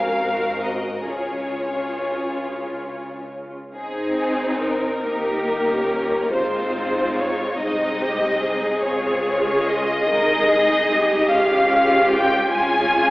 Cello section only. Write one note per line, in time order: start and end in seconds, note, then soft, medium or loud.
0.00 1.07 G#2 medium
1.05 3.54 C#3 soft
5.03 6.30 G4 medium
6.34 7.60 F4 medium
7.59 8.00 D#4 medium
8.00 8.42 G4 medium
8.41 10.09 G#4 medium
10.09 10.50 A#4 medium
10.49 10.90 G#4 medium
10.89 12.51 G4 medium
12.51 13.10 F4 medium